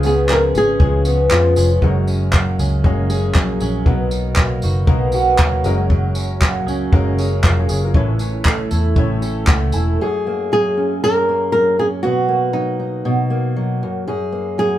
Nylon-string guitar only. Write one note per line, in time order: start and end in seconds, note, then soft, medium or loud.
0.06 0.29 G#4 medium
0.32 0.39 A#4 medium
0.58 1.35 G#4 loud
1.32 1.70 F4 medium
10.53 11.03 G#4 loud
11.04 11.51 A#4 loud
11.52 11.78 A#4 loud
11.79 11.86 G#4 medium
12.03 12.53 F#4 medium
12.53 13.77 D#4 medium
14.59 14.78 G#4 loud